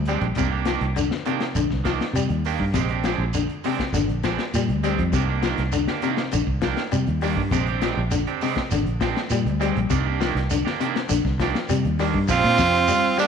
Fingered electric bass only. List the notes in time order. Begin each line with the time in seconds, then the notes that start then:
Already playing: D2
0.21 A#1
0.36 C2
0.81 C2
1.55 A#1
1.70 C2
2.13 C3
2.29 D#2
2.60 G2
2.74 A#1
3.18 A#1
3.92 G#1
4.08 A#1
4.54 A#2
4.69 D2
4.98 F2
5.12 C2
5.58 C2
6.33 A#1
6.47 C2
6.93 C3
7.07 D#2
7.37 G2
7.51 A#1
7.97 A#1
8.72 G#1
8.86 A#1
9.30 A#2
9.45 D2
9.76 A#1
9.90 C2
10.35 C2
11.10 A#1
11.25 C2
11.70 C3
11.85 D#2
12.14 G2
12.28 A#1
12.44 A#2
12.59 F2